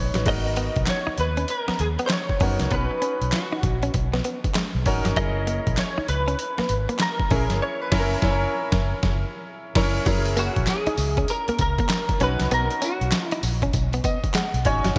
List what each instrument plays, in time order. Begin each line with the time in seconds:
Already playing: fingered electric bass A#1, grand piano D#4 B4 C#5
0.14 fingered electric bass A1, clean electric guitar F#3, grand piano D#4 B4, snare, closed hi-hat
0.26 fingered electric bass G#1, clean electric guitar G#3 D#5, grand piano B3 D#4 F#4 A#4, kick, closed hi-hat, crash
0.46 muted clean electric guitar stroke
0.56 clean electric guitar B3, closed hi-hat
0.76 fingered electric bass B1, kick, closed hi-hat
0.86 clean electric guitar C#5, snare, clap, closed hi-hat
1.07 clean electric guitar D#4, muted fingered electric bass stroke
1.18 fingered electric bass D#2, clean electric guitar B4, muted clean electric guitar stroke, closed hi-hat
1.37 clean electric guitar C#4, closed hi-hat
1.48 clean electric guitar A#4, closed hi-hat
1.68 clean electric guitar B3, muted fingered electric bass stroke, snare
1.79 fingered electric bass D#2, clean electric guitar G#4, muted clean electric guitar stroke, closed hi-hat
1.99 clean electric guitar B3, closed hi-hat
2.06 clean electric guitar C5, snare, clap, closed hi-hat
2.12 clean electric guitar C#5
2.29 kick
2.40 fingered electric bass F#2, grand piano B3 D#4 F#4 A#4, clean electric guitar C#4, kick, open hi-hat
2.60 fingered electric bass C2, snare, closed hi-hat
2.71 fingered electric bass B1, clean electric guitar B3 B4, grand piano C#4 D#4 F#4 B4, kick, closed hi-hat
2.91 muted clean electric guitar stroke
3.02 clean electric guitar C#4, closed hi-hat
3.21 fingered electric bass B1, closed hi-hat
3.32 clean electric guitar F#4, snare, clap, closed hi-hat
3.53 clean electric guitar D#4
3.63 fingered electric bass A#1, muted clean electric guitar stroke, kick, closed hi-hat
3.83 clean electric guitar C#4, closed hi-hat
3.94 fingered electric bass B1, muted clean electric guitar stroke, kick, closed hi-hat
4.13 clean electric guitar B3, snare
4.24 clean electric guitar B3, closed hi-hat
4.44 kick, closed hi-hat
4.55 clean electric guitar G#3, snare, clap, closed hi-hat
4.75 fingered electric bass B1
4.86 fingered electric bass G#1, grand piano C#4 D#4 F#4 A#4, muted clean electric guitar stroke, kick, open hi-hat
5.05 fingered electric bass G1, clean electric guitar F#3, snare, closed hi-hat
5.16 fingered electric bass F#1, clean electric guitar F#3 D#5, grand piano C#4 E4 G#4 A#4, kick, closed hi-hat
5.37 muted clean electric guitar stroke
5.47 clean electric guitar A#3, closed hi-hat
5.67 fingered electric bass A#1, kick, closed hi-hat
5.77 clean electric guitar C#5, snare, clap, closed hi-hat
5.98 clean electric guitar D#4, muted fingered electric bass stroke
6.08 fingered electric bass C#2, clean electric guitar B4, muted clean electric guitar stroke, closed hi-hat
6.28 clean electric guitar C#4, closed hi-hat
6.39 closed hi-hat
6.58 clean electric guitar A#3, muted fingered electric bass stroke, snare
6.69 fingered electric bass G#1, muted clean electric guitar stroke, closed hi-hat
6.89 clean electric guitar A#3, closed hi-hat
6.99 clean electric guitar A#4, snare, clap, closed hi-hat
7.20 kick
7.30 fingered electric bass A#1, grand piano C#4 E4 G#4 A#4, clean electric guitar C#4, kick, open hi-hat
7.50 fingered electric bass G1, snare, closed hi-hat
7.62 clean electric guitar C#5
7.82 clean electric guitar B4
7.91 fingered electric bass F#1, grand piano C#4 E4, clean electric guitar A#4, kick, snare, crash
7.99 grand piano A#4
8.22 fingered electric bass F#1, grand piano C#4 E4, kick, snare
8.30 grand piano A#4
8.72 fingered electric bass F#1, kick, snare
9.03 fingered electric bass F#1, kick, snare
9.75 fingered electric bass F#1, grand piano C#4 E4 A#4 A#5, kick, snare, crash
10.06 fingered electric bass F#1, clean electric guitar F#3, grand piano C#4 E4 G#4 A#4, kick, closed hi-hat, crash, tambourine
10.25 muted clean electric guitar stroke, closed hi-hat
10.37 clean electric guitar A#3 F#4, closed hi-hat, tambourine
10.56 fingered electric bass A#1, kick, closed hi-hat
10.67 clean electric guitar G#4, snare, clap, closed hi-hat, tambourine
10.87 clean electric guitar D#4, muted fingered electric bass stroke, closed hi-hat
10.97 fingered electric bass C#2, muted clean electric guitar stroke, open hi-hat, tambourine
11.17 clean electric guitar C#4, kick, closed hi-hat
11.28 clean electric guitar A#4, closed hi-hat, tambourine
11.48 clean electric guitar A#3, muted fingered electric bass stroke, closed hi-hat
11.59 fingered electric bass C#2, clean electric guitar A#4, muted clean electric guitar stroke, kick, closed hi-hat, tambourine
11.78 clean electric guitar A#3, kick, closed hi-hat
11.89 snare, clap, closed hi-hat, tambourine
12.09 kick, closed hi-hat
12.20 fingered electric bass B1, grand piano C#4 D#4 F#4, clean electric guitar C#4 B4, closed hi-hat
12.40 fingered electric bass C2, snare, closed hi-hat
12.51 fingered electric bass B1, clean electric guitar B3 A#4, closed hi-hat, tambourine
12.70 muted clean electric guitar stroke, closed hi-hat
12.82 clean electric guitar C#4 F#4, closed hi-hat, tambourine
13.01 fingered electric bass B1, closed hi-hat
13.11 snare, clap, closed hi-hat, tambourine
13.28 clean electric guitar E4, closed hi-hat
13.32 clean electric guitar D#4
13.43 fingered electric bass A#1, muted clean electric guitar stroke, open hi-hat, tambourine
13.62 clean electric guitar C#4, kick, closed hi-hat
13.73 fingered electric bass B1, muted clean electric guitar stroke, kick, closed hi-hat, tambourine
13.93 clean electric guitar B3, closed hi-hat
14.04 clean electric guitar B3, grand piano D#5, kick, closed hi-hat, tambourine
14.24 kick, closed hi-hat
14.34 clean electric guitar G#3, grand piano F#5, snare, clap, closed hi-hat, tambourine
14.54 fingered electric bass B1, closed hi-hat
14.65 fingered electric bass G#1, grand piano C#4 D#4 F#4 C#5 G#5, muted clean electric guitar stroke, kick, closed hi-hat
14.84 fingered electric bass G1, clean electric guitar F#3, snare, closed hi-hat